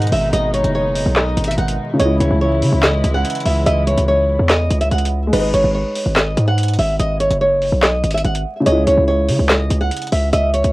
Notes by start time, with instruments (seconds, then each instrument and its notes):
Already playing: 808-style bass G#2, string section B2 D#3 G#3 D#4, grand piano G#3 D#4 B4, nylon-string guitar F#5
0.02 closed hi-hat
0.07 closed hi-hat
0.12 808-style bass G#1, nylon-string guitar E5, open hi-hat
0.33 808-style bass G#1, synth pluck D#5, nylon-string guitar D#5, closed hi-hat
0.54 nylon-string guitar C#5, closed hi-hat
0.64 808-style bass F#1, closed hi-hat
0.75 nylon-string guitar C#5
0.95 open hi-hat
1.06 808-style bass B1
1.16 nylon-string guitar D#5, snare, clap, closed hi-hat
1.37 808-style bass G#1, closed hi-hat
1.44 nylon-string guitar E5, closed hi-hat
1.51 closed hi-hat
1.58 808-style bass G#1, nylon-string guitar F#5, closed hi-hat
1.68 closed hi-hat
1.94 grand piano C#3
2.00 808-style bass C#2, string section C#3 E3 G#3 E4, grand piano G#3, synth pluck C#5, nylon-string guitar D#5, closed hi-hat
2.05 grand piano E4
2.20 808-style bass C#2, nylon-string guitar C#5, closed hi-hat
2.31 808-style bass C#2
2.41 nylon-string guitar C#5
2.62 808-style bass C#3, open hi-hat
2.72 808-style bass C#2
2.83 nylon-string guitar D#5, snare, clap, closed hi-hat
3.04 808-style bass C#2, closed hi-hat
3.14 nylon-string guitar F#5
3.25 closed hi-hat
3.30 closed hi-hat
3.35 closed hi-hat
3.40 closed hi-hat
3.45 808-style bass C#2, nylon-string guitar E5, open hi-hat
3.66 808-style bass C#2, nylon-string guitar D#5, synth pluck E5, closed hi-hat
3.87 nylon-string guitar C#5, closed hi-hat
3.98 808-style bass C#2, closed hi-hat
4.08 nylon-string guitar C#5
4.39 808-style bass E2
4.49 nylon-string guitar D#5, snare, clap, closed hi-hat
4.70 808-style bass C#2, closed hi-hat
4.81 nylon-string guitar E5, closed hi-hat
4.91 808-style bass C#2, nylon-string guitar F#5, closed hi-hat
4.98 closed hi-hat
5.05 closed hi-hat
5.27 grand piano G#3
5.33 808-style bass G#1, grand piano D#4, synth pluck B4, nylon-string guitar D#5, closed hi-hat, crash
5.39 grand piano B4
5.54 808-style bass G#1, nylon-string guitar C#5, closed hi-hat
5.64 808-style bass G#1
5.75 nylon-string guitar C#5
5.95 open hi-hat
6.06 808-style bass G#1
6.16 nylon-string guitar D#5, snare, clap, closed hi-hat
6.37 808-style bass G#2, closed hi-hat
6.48 nylon-string guitar F#5
6.58 closed hi-hat
6.63 closed hi-hat
6.68 closed hi-hat
6.73 closed hi-hat
6.79 808-style bass G#1, nylon-string guitar E5, open hi-hat
7.00 808-style bass G#1, nylon-string guitar D#5, synth pluck D#5, closed hi-hat
7.20 nylon-string guitar C#5, closed hi-hat
7.31 808-style bass F#1, closed hi-hat
7.41 nylon-string guitar C#5
7.62 open hi-hat
7.72 808-style bass B1
7.83 nylon-string guitar D#5, snare, clap, closed hi-hat
8.04 808-style bass G#1, closed hi-hat
8.11 nylon-string guitar E5, closed hi-hat
8.18 closed hi-hat
8.24 808-style bass G#1, nylon-string guitar F#5, closed hi-hat
8.35 closed hi-hat
8.60 grand piano C#3
8.66 808-style bass C#2, grand piano G#3, synth pluck C#5, nylon-string guitar D#5, closed hi-hat
8.72 grand piano E4
8.87 808-style bass C#2, nylon-string guitar C#5, closed hi-hat
8.98 808-style bass C#2
9.08 nylon-string guitar C#5
9.29 808-style bass C#3, open hi-hat
9.39 808-style bass C#2
9.49 nylon-string guitar D#5, snare, clap, closed hi-hat
9.70 808-style bass C#2, closed hi-hat
9.81 nylon-string guitar F#5
9.91 closed hi-hat
9.96 closed hi-hat
10.02 closed hi-hat
10.07 closed hi-hat
10.12 808-style bass C#2, nylon-string guitar E5, open hi-hat
10.33 808-style bass C#2, nylon-string guitar D#5, synth pluck E5, closed hi-hat
10.54 nylon-string guitar C#5, closed hi-hat
10.64 808-style bass C#2, closed hi-hat